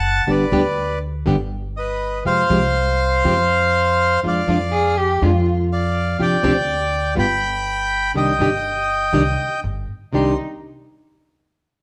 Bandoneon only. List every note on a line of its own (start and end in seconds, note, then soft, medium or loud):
0.00 0.24 F#5 medium
0.00 0.31 A5 loud
0.30 0.99 B4 medium
0.30 0.99 D5 medium
1.77 2.24 B4 medium
1.77 2.23 D#5 medium
2.26 4.20 C5 medium
2.26 4.20 F5 loud
4.28 4.95 D5 medium
4.28 4.95 F5 medium
5.72 6.17 D5 medium
5.72 6.21 F5 medium
6.21 7.14 D5 medium
6.21 7.14 G5 loud
7.19 8.12 G5 loud
7.19 8.12 B5 loud
8.17 9.60 D#5 medium
8.17 9.60 G5 loud
10.15 10.37 C6 medium